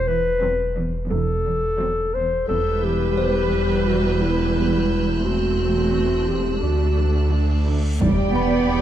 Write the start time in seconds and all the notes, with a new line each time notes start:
Already playing: E1 E2 E5
0.07 E3 B4
0.42 E2 F#3 C4
0.77 E2
1.10 E1 E2 E3 A4
1.45 E2
1.79 E2 F#3 C4
2.14 E2 C5
2.48 E1 E2 G3 A4 B4 E6 G6
2.83 E3 G4
3.17 E2 C5 F#6
3.52 E2
3.86 E3 F#4
4.21 E2 E4
4.56 E2
4.90 E2
5.24 E2 A3 C4 F#4, reverse cymbal
5.60 E3
5.94 E2
6.28 E2 G4
6.63 D2 A3 D4 F#4
6.98 D3
7.32 D3
7.66 D3
8.00 E1 E2 G3 G4 D5 G5 B5, taiko, impact
8.34 E2 B3 B5
8.70 E2 C6